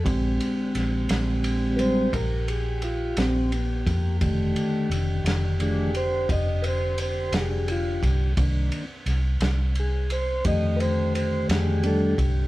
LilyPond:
<<
  \new Staff \with { instrumentName = "Tonewheel organ" } { \time 12/8 \key bes \major \tempo 4. = 58 r2 r8 <b' c''>8 bes'8 aes'8 f'8 c'8 b8 bes8 | r2 aes'8 c''8 ees''8 <b' c''>8 c''8 aes'8 f'8 r8 | r2 aes'8 c''8 ees''8 <b' c''>8 c''8 aes'8 a'8 r8 | }
  \new Staff \with { instrumentName = "Tonewheel organ" } { \clef bass \time 12/8 \key bes \major <d aes c' g'>2~ <d aes c' g'>8 <d g aes c'>8 r2. | <d ees a g'>2 <ees f a d'>8 r2. r8 | <ees bes d'>8 r2 r8 <d ees a g'>2 <ees g a d'>8 r8 | }
  \new Staff \with { instrumentName = "Fingered electric bass" } { \clef bass \time 12/8 \key bes \major bes,,8 r8 bes,,8 bes,,4. bes,,4. bes,,4 f,8 | f,,8 r8 f,,8 f,,4. f,,4. f,,4 c,8 | c,8 r8 c,8 c,4. f,4. f,4 c,8 | }
  \new DrumStaff \with { instrumentName = "Drums" } \drummode { \time 12/8 <bd cymr>8 cymr8 <cymr sn>8 <cymr sn>8 cymr8 cymr8 <bd cymr>8 cymr8 cymr8 <cymr sn>8 cymr8 <bd cymr sn>8 | <bd cymr>8 cymr8 cymr8 <cymr sn>8 cymr8 cymr8 <bd cymr>8 cymr8 cymr8 <cymr sn>8 cymr8 <bd cymr sn>8 | <bd cymr>8 cymr8 <cymr sn>8 <cymr sn>8 cymr8 cymr8 <bd cymr>8 cymr8 cymr8 <cymr sn>8 cymr8 <bd cymr>8 | }
>>